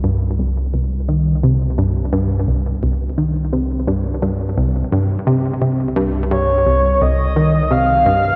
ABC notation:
X:1
M:4/4
L:1/8
Q:1/4=86
K:Cphr
V:1 name="Soft synth lead"
z8 | z8 | z2 d2 e2 f2 |]
V:2 name="Synth arpeggio sound" clef=bass
G,, C,, C,, E, C, G,, G,, C,, | C,, E, C, G,, G,, C,, G,, C, | C, G,, G,, C,, C,, E, C, G,, |]
V:3 name="Analog synth bass" clef=bass
C,,8- | C,,8 | C,,8 |]